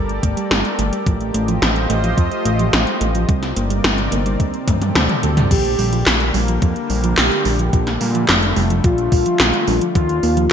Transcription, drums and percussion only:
0.09 closed hi-hat
0.23 kick, closed hi-hat
0.37 closed hi-hat
0.51 snare, closed hi-hat
0.65 closed hi-hat
0.79 closed hi-hat
0.93 closed hi-hat
1.06 kick, closed hi-hat
1.21 closed hi-hat
1.34 closed hi-hat
1.48 closed hi-hat
1.62 snare, closed hi-hat
1.76 closed hi-hat
1.90 closed hi-hat
2.04 closed hi-hat
2.18 kick, closed hi-hat
2.32 closed hi-hat
2.45 closed hi-hat
2.59 closed hi-hat
2.73 snare, closed hi-hat
2.87 closed hi-hat
3.01 closed hi-hat
3.15 closed hi-hat
3.29 kick, closed hi-hat
3.43 snare, closed hi-hat
3.57 closed hi-hat
3.70 closed hi-hat
3.84 snare, closed hi-hat
3.98 closed hi-hat
4.12 closed hi-hat
4.26 closed hi-hat
4.40 kick, closed hi-hat
4.54 closed hi-hat
4.68 kick, closed hi-hat, high tom
4.82 closed hi-hat, high tom
4.95 snare, closed hi-hat, mid tom
5.09 closed hi-hat, mid tom
5.23 closed hi-hat
5.37 closed hi-hat, mid tom
5.51 kick, closed hi-hat, crash
5.65 closed hi-hat
5.79 open hi-hat
5.93 closed hi-hat
6.07 snare, clap, closed hi-hat
6.20 closed hi-hat
6.34 open hi-hat
6.48 closed hi-hat
6.62 kick, closed hi-hat
6.76 closed hi-hat
6.90 open hi-hat
7.04 closed hi-hat
7.18 snare, clap, closed hi-hat
7.31 closed hi-hat
7.45 open hi-hat
7.59 closed hi-hat
7.73 kick, closed hi-hat
7.87 snare, closed hi-hat
8.01 open hi-hat
8.15 closed hi-hat
8.29 snare, clap, closed hi-hat
8.43 closed hi-hat
8.56 open hi-hat
8.70 closed hi-hat
8.84 kick, closed hi-hat
8.98 closed hi-hat
9.12 kick, open hi-hat
9.26 closed hi-hat
9.40 snare, clap, closed hi-hat
9.54 closed hi-hat
9.68 open hi-hat
9.81 closed hi-hat
9.95 kick, closed hi-hat
10.09 closed hi-hat
10.23 open hi-hat
10.37 closed hi-hat

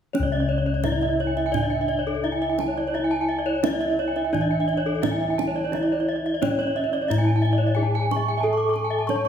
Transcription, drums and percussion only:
0.15 kendang high
0.84 kendang slap, kendang high, kendang low
1.02 kendang slap
1.37 kendang slap
1.54 kendang low
1.89 kendang slap
2.59 kendang high
3.64 kendang slap, kendang high
3.82 kendang slap
4.16 kendang slap
4.34 kendang low
4.69 kendang slap
5.03 kendang high, kendang low
5.39 kendang high
5.73 kendang high
6.42 kendang slap, kendang high, kendang low
6.61 kendang slap
6.94 kendang slap
7.11 kendang low
7.45 kendang slap
8.11 kendang high
8.76 kendang slap
9.09 kendang slap, kendang high

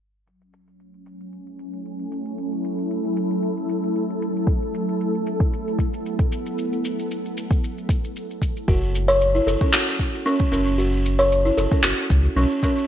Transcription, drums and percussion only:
0.27 shaker
0.41 shaker
0.53 shaker
0.67 shaker
0.80 shaker
0.94 shaker
1.06 shaker
1.20 shaker
1.32 shaker
1.47 shaker
1.59 shaker
1.73 shaker
1.85 shaker
1.99 shaker
2.12 shaker
2.25 shaker
2.38 shaker
2.52 shaker
2.64 shaker
2.78 shaker
2.91 shaker
3.05 shaker
3.17 shaker
3.31 shaker
3.43 shaker
3.57 shaker
3.69 shaker
3.83 shaker
3.96 shaker
4.10 shaker
4.22 shaker
4.36 shaker
4.47 kick, shaker
4.62 shaker
4.74 shaker
4.89 shaker
5.01 shaker
5.15 shaker
5.27 shaker
5.40 kick, shaker
5.53 shaker
5.68 shaker
5.79 kick, shaker
5.94 shaker
6.06 shaker
6.19 kick, shaker
6.32 shaker
6.46 shaker
6.58 shaker
6.73 shaker
6.85 shaker
6.99 shaker
7.11 shaker
7.25 shaker
7.37 shaker
7.51 kick, shaker
7.64 shaker
7.78 shaker
7.89 kick, shaker
8.04 shaker
8.16 shaker
8.31 shaker
8.42 kick, shaker
8.57 shaker
8.68 kick, shaker
8.83 shaker
8.95 shaker
9.09 shaker
9.21 shaker
9.36 shaker
9.48 shaker
9.61 kick, shaker
9.73 clap, shaker
9.88 shaker
9.99 kick, shaker
10.15 shaker
10.27 shaker
10.40 kick, shaker
10.53 shaker
10.67 shaker
10.79 shaker
10.94 shaker
11.06 shaker
11.20 shaker
11.32 shaker
11.46 shaker
11.58 shaker
11.71 kick, shaker
11.83 clap, shaker
11.99 shaker
12.10 kick, shaker
12.25 shaker
12.38 shaker
12.52 shaker
12.63 kick, shaker
12.78 shaker

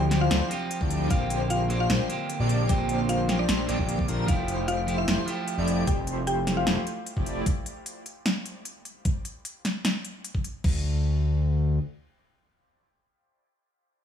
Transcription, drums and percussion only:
0.11 snare, closed hi-hat
0.31 snare, closed hi-hat
0.51 closed hi-hat
0.71 closed hi-hat
0.81 kick
0.91 closed hi-hat
1.10 kick, closed hi-hat
1.30 closed hi-hat
1.50 closed hi-hat
1.70 closed hi-hat
1.90 snare, closed hi-hat
2.10 closed hi-hat
2.30 closed hi-hat
2.49 closed hi-hat
2.69 kick, closed hi-hat
2.89 closed hi-hat
3.09 closed hi-hat
3.29 snare, closed hi-hat
3.49 snare, closed hi-hat
3.69 closed hi-hat
3.79 kick
3.89 closed hi-hat
3.99 kick
4.08 closed hi-hat
4.28 kick, closed hi-hat
4.48 closed hi-hat
4.68 closed hi-hat
4.88 closed hi-hat
5.08 snare, closed hi-hat
5.28 closed hi-hat
5.48 closed hi-hat
5.68 closed hi-hat
5.87 kick, closed hi-hat
6.07 closed hi-hat
6.27 closed hi-hat
6.47 snare, closed hi-hat
6.67 snare, closed hi-hat
6.87 closed hi-hat
7.07 closed hi-hat
7.17 kick
7.26 closed hi-hat
7.46 kick, closed hi-hat
7.66 closed hi-hat
7.86 closed hi-hat
8.06 closed hi-hat
8.26 snare, closed hi-hat
8.46 closed hi-hat
8.65 closed hi-hat
8.85 closed hi-hat
9.05 kick, closed hi-hat
9.25 closed hi-hat
9.45 closed hi-hat
9.65 snare, closed hi-hat
9.85 snare, closed hi-hat
10.05 closed hi-hat
10.24 closed hi-hat
10.35 kick
10.44 closed hi-hat
10.64 kick, crash

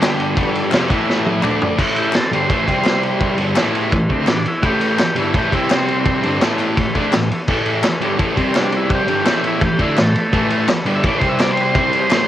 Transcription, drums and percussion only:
0.02 snare, clap, ride
0.20 ride
0.37 kick, ride
0.55 ride
0.72 snare, clap, ride
0.90 kick, ride
1.10 snare
1.26 high tom
1.43 clap, mid tom
1.62 floor tom
1.79 kick, crash
1.96 ride
2.13 snare, clap, ride
2.33 ride
2.50 kick, ride
2.68 kick, ride
2.84 snare, clap, ride
3.03 ride
3.20 kick, ride
3.38 ride
3.56 snare, clap, ride
3.75 ride
3.92 kick, ride
4.09 kick, ride
4.27 snare, clap, ride
4.46 ride
4.63 kick, ride
4.81 ride
4.98 snare, clap, ride
5.16 ride
5.34 kick, ride
5.52 kick, ride
5.70 snare, clap, ride
5.88 ride
6.06 kick, ride
6.23 ride
6.41 snare, clap, ride
6.59 clap, ride
6.77 kick, ride
6.95 kick, ride
7.12 snare, clap, ride
7.31 ride
7.48 kick, crash
7.66 ride
7.83 snare, clap, ride
8.02 ride
8.19 kick, ride
8.37 kick, ride
8.55 snare, clap, ride
8.72 ride
8.90 kick, ride
9.08 ride
9.26 snare, clap, ride
9.44 ride
9.61 kick, ride
9.79 kick, ride
9.97 snare, clap, ride
10.16 ride
10.33 kick, ride
10.50 ride
10.68 snare, clap, ride
10.86 ride
11.04 kick, ride
11.21 kick, ride
11.39 snare, clap, ride
11.57 ride
11.75 kick, ride
11.93 ride
12.10 snare, clap, ride

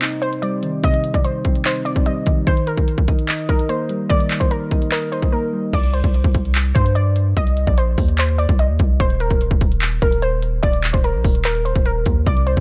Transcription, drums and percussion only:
0.02 clap, closed hi-hat
0.12 closed hi-hat
0.23 closed hi-hat
0.33 closed hi-hat
0.43 closed hi-hat
0.63 closed hi-hat
0.84 kick, closed hi-hat
0.94 closed hi-hat
1.04 closed hi-hat
1.14 kick, closed hi-hat
1.25 closed hi-hat
1.45 kick, closed hi-hat
1.55 closed hi-hat
1.65 clap, closed hi-hat
1.76 closed hi-hat
1.86 closed hi-hat
1.96 kick, closed hi-hat
2.06 closed hi-hat
2.26 kick, closed hi-hat
2.47 kick, closed hi-hat
2.57 closed hi-hat
2.67 closed hi-hat
2.77 kick, closed hi-hat
2.88 closed hi-hat
2.98 kick
3.08 kick, closed hi-hat
3.19 closed hi-hat
3.29 clap, closed hi-hat
3.39 closed hi-hat
3.49 kick, closed hi-hat
3.59 closed hi-hat
3.69 closed hi-hat
3.89 closed hi-hat
4.10 kick, closed hi-hat
4.20 closed hi-hat
4.31 clap, closed hi-hat
4.41 kick, closed hi-hat
4.51 closed hi-hat
4.71 kick, closed hi-hat
4.82 closed hi-hat
4.92 clap, closed hi-hat
5.02 closed hi-hat
5.13 closed hi-hat
5.22 kick, closed hi-hat
5.73 kick, closed hi-hat, crash
5.84 closed hi-hat
5.94 closed hi-hat
6.04 kick, closed hi-hat
6.14 closed hi-hat
6.24 kick
6.34 kick, closed hi-hat
6.45 closed hi-hat
6.55 clap, closed hi-hat
6.65 closed hi-hat
6.75 kick, closed hi-hat
6.86 closed hi-hat
6.96 closed hi-hat
7.16 closed hi-hat
7.37 kick, closed hi-hat
7.47 closed hi-hat
7.57 closed hi-hat
7.67 kick, closed hi-hat
7.78 closed hi-hat
7.98 kick, open hi-hat
8.09 closed hi-hat
8.18 clap, closed hi-hat
8.29 closed hi-hat
8.39 closed hi-hat
8.49 kick, closed hi-hat
8.59 closed hi-hat
8.79 kick, closed hi-hat
9.00 kick, closed hi-hat
9.10 closed hi-hat
9.20 closed hi-hat
9.31 kick, closed hi-hat
9.41 closed hi-hat
9.51 kick
9.61 kick, closed hi-hat
9.72 closed hi-hat
9.82 clap, closed hi-hat
9.92 closed hi-hat
10.02 kick, closed hi-hat
10.12 closed hi-hat
10.22 closed hi-hat
10.42 closed hi-hat
10.63 kick, closed hi-hat
10.73 closed hi-hat
10.84 clap, closed hi-hat
10.94 kick, closed hi-hat
11.04 closed hi-hat
11.24 kick, open hi-hat
11.35 closed hi-hat
11.45 clap, closed hi-hat
11.55 closed hi-hat
11.66 closed hi-hat
11.76 kick, closed hi-hat
11.86 closed hi-hat
12.06 kick, closed hi-hat
12.27 kick, closed hi-hat
12.37 closed hi-hat
12.47 closed hi-hat
12.57 kick, closed hi-hat

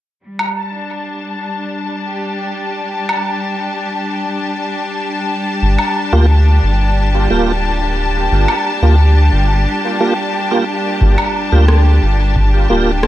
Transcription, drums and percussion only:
0.39 low woodblock
3.09 low woodblock
5.79 low woodblock
8.48 low woodblock
11.01 kick
11.18 low woodblock
11.68 cross-stick
12.36 kick
13.03 cross-stick

